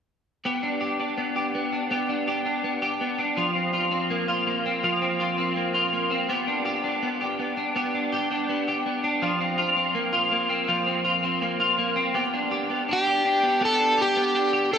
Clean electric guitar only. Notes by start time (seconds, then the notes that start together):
0.45 B3 G4
0.63 D4
0.81 G4
0.99 D4
1.18 B3
1.36 G4
1.55 B3
1.73 D4
1.91 B3 G4
2.09 D4
2.28 G4
2.45 D4
2.64 B3
2.82 G4
3.01 B3
3.19 D4
3.37 F3 F4
3.55 C4
3.73 F4
3.91 C4
4.10 A#3
4.28 F4
4.47 A#3
4.66 C4
4.83 F3 F4
5.02 C4
5.20 F4
5.38 C4
5.56 A#3
5.74 F4
5.93 A#3
6.11 C4
6.29 B3 G4
6.47 D4
6.65 G4
6.84 D4
7.03 B3
7.21 G4
7.39 B3
7.57 D4
7.76 B3 G4
7.94 D4
8.12 G4
8.31 D4
8.49 B3
8.68 G4
8.86 B3
9.04 D4
9.22 F3 F4
9.41 C4
9.58 F4
9.77 C4
9.95 A#3
10.13 F4
10.31 A#3
10.49 C4
10.68 F3 F4
10.87 C4
11.05 F4
11.23 C4
11.42 A#3
11.60 F4
11.78 A#3
11.96 C4
12.14 B3 G4
12.34 D4
12.51 G4
12.70 B3
12.89 D4
13.07 G4
13.25 D4
13.43 B3
13.61 B3 G4
13.80 D4
13.98 G4
14.17 B3
14.35 D4
14.53 G4
14.71 D4